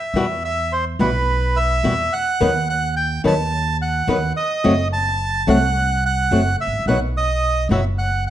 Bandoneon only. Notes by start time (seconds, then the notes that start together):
Already playing: E5
0.45 E5
0.72 C5
1.01 B4
1.57 E5
2.13 F#5
2.70 F#5
2.96 G5
3.27 A5
3.82 F#5
4.37 D#5
4.93 A5
5.50 F#5
6.06 F#5
6.61 E5
6.88 F#5
7.17 D#5
7.72 E5
7.98 F#5